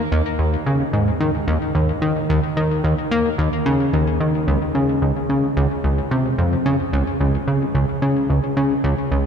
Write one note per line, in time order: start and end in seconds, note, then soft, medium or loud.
0.12 0.22 D#2 loud
0.39 0.56 D#2 medium
0.66 0.84 C#3 medium
0.93 1.11 G#2 medium
1.20 1.31 D#3 medium
1.47 1.58 D#2 loud
1.75 1.93 D#2 medium
2.02 2.20 D#3 medium
2.29 2.40 D#2 loud
2.57 2.83 D#3 medium
2.84 2.95 D#2 medium
3.11 3.29 A#3 medium
3.38 3.49 D#2 medium
3.66 3.92 C#3 loud
3.93 4.19 D#2 medium
4.20 4.46 D#3 medium
4.48 4.58 C#2 loud
4.75 5.01 C#3 medium
5.02 5.13 C#2 medium
5.29 5.47 C#3 medium
5.57 5.67 C#2 medium
5.84 6.02 C#2 medium
6.11 6.29 C3 medium
6.38 6.56 F2 medium
6.66 6.76 C#3 medium
6.93 7.04 C#2 loud
7.20 7.38 C#2 medium
7.47 7.65 C#3 medium
7.75 7.85 C#2 medium
8.02 8.28 C#3 medium
8.30 8.40 C#2 medium
8.57 8.74 C#3 medium
8.84 8.95 C#2 loud
9.11 9.26 C#2 medium